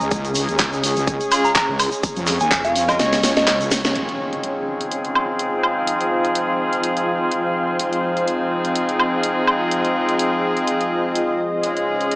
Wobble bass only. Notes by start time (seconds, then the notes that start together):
0.01 C#2
0.11 C#2
0.48 D#2
0.59 C#2
0.97 C#2
1.69 C#2
2.17 F2
2.41 D#2
2.51 F2
2.99 C#2
3.37 C#2
3.71 C#2